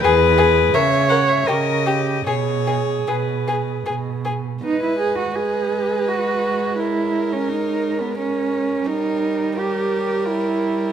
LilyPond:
<<
  \new Staff \with { instrumentName = "Violin" } { \time 3/4 \key gis \minor \tempo 4 = 84 b'4 e''8 fis''16 e''16 dis''4 | cis''4 b'4 r4 | dis''4 dis''2 | cis''2 cis''4 |
cis''4 cis''2 | }
  \new Staff \with { instrumentName = "Viola" } { \time 3/4 \key gis \minor gis'4 cis''4 ais'8 g'8 | gis'2~ gis'8 r8 | gis2.~ | gis2. |
g2. | }
  \new Staff \with { instrumentName = "Violin" } { \time 3/4 \key gis \minor gis'8 gis'8 ais'8 ais'8 g'8 g'8 | gis'8 gis'8 gis'8 gis'8 gis'8 gis'8 | b'4 b'2 | ais'2 ais'4 |
ais'4 ais'2 | }
  \new Staff \with { instrumentName = "Cello" } { \time 3/4 \key gis \minor e,4 cis4 cis4 | b,4 b,4 b,4 | dis'16 e'16 gis'16 fis'16 gis'4 fis'4 | e'8. cis'16 dis'8. b16 cis'4 |
dis'4 g'4 e'4 | }
>>